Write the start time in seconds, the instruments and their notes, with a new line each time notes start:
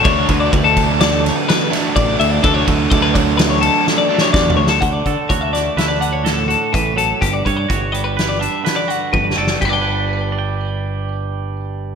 0.04 picked electric bass D2, overdriven electric guitar D3 F#3 A3 D4, clean electric guitar C#5, kick, ride
0.29 picked electric bass D2, clean electric guitar B4, kick, ride
0.40 clean electric guitar D5
0.52 picked electric bass D2, clean electric guitar B4, kick, ride
0.64 clean electric guitar A4
0.77 kick, ride
1.01 clean electric guitar D5, snare, ride
1.24 clean electric guitar C#5, snare, ride
1.37 clean electric guitar B4
1.49 clean electric guitar B4, snare, ride
1.70 overdriven electric guitar D3 F#3 A3 D4, snare, ride
1.96 picked electric bass A1, clean electric guitar D5, kick, ride
2.20 picked electric bass D2, clean electric guitar E5, ride
2.31 clean electric guitar D5
2.42 picked electric bass D2, overdriven electric guitar D3 F#3 A3 D4, clean electric guitar A4, kick, ride
2.54 clean electric guitar C#5
2.66 picked electric bass D2, clean electric guitar B4, kick, ride
2.90 picked electric bass D2, clean electric guitar D5, kick, ride
3.02 clean electric guitar B4
3.14 clean electric guitar C#5, kick, ride
3.37 clean electric guitar B4, snare, ride
3.50 clean electric guitar C#5
3.61 clean electric guitar A4, ride
3.87 snare
3.98 clean electric guitar D5
4.09 overdriven electric guitar D3 F#3 A3 D4
4.18 clean electric guitar C#5, snare
4.33 picked electric bass E2, clean electric guitar D5, kick, snare
4.50 floor tom
4.57 picked electric bass D2, clean electric guitar C#5
4.67 clean electric guitar A4, snare
4.81 picked electric bass D2, clean electric guitar D3 F#5, kick, closed hi-hat
4.93 clean electric guitar D5
5.06 picked electric bass D3, clean electric guitar A4, kick, closed hi-hat
5.29 picked electric bass D2, clean electric guitar F#4 C#5, kick, closed hi-hat
5.41 clean electric guitar E5
5.53 clean electric guitar A3 D5, snare, closed hi-hat
5.77 picked electric bass D2, clean electric guitar B4 E5, snare, closed hi-hat
5.88 clean electric guitar D5
6.00 clean electric guitar D4 F#5, closed hi-hat
6.13 clean electric guitar C#5
6.24 clean electric guitar A2 A4, snare, closed hi-hat
6.48 clean electric guitar F#4 A4, closed hi-hat
6.73 picked electric bass A1, clean electric guitar E3 B4, kick, closed hi-hat
6.96 clean electric guitar F#3 A4, closed hi-hat
7.21 picked electric bass G1, clean electric guitar G2 G4, kick, closed hi-hat
7.33 clean electric guitar D5
7.45 picked electric bass G2, clean electric guitar B4 C#5, kick, closed hi-hat
7.57 clean electric guitar D5
7.68 picked electric bass G1, clean electric guitar F#4 C#5, kick, closed hi-hat
7.92 clean electric guitar G3 D5, closed hi-hat
8.04 clean electric guitar B4
8.17 clean electric guitar B4, snare, closed hi-hat
8.29 clean electric guitar D5
8.39 clean electric guitar D4 E5, closed hi-hat
8.64 clean electric guitar D3 B4, snare, closed hi-hat
8.76 clean electric guitar D5
8.88 clean electric guitar F#4 F#5, closed hi-hat
9.12 picked electric bass G1, clean electric guitar G2 B4, kick, high tom
9.31 snare
9.36 picked electric bass F#1, clean electric guitar A4 D5
9.47 snare
9.61 picked electric bass G1, clean electric guitar G2 G4 B4, kick, crash
9.67 clean electric guitar G3 D5
9.71 clean electric guitar D4 G5
9.81 clean electric guitar B4
10.32 clean electric guitar D5
10.39 clean electric guitar G5